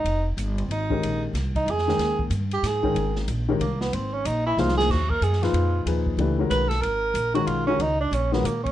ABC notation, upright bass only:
X:1
M:3/4
L:1/8
Q:"Swing" 1/4=186
K:Ab
V:1 name="Upright bass" clef=bass
F,,,2 G,,,2 A,,,2 | B,,,2 C,,2 F,,2 | E,,2 G,,2 A,,2 | A,,,2 B,,,2 C,,2 |
A,,,2 B,,,2 C,,2 | [K:G#dor] D,,2 F,,2 E,,2 | D,,2 C,,2 B,,,2 | G,,,2 A,,,2 B,,,2 |
C,,2 A,,,2 A,,2 |]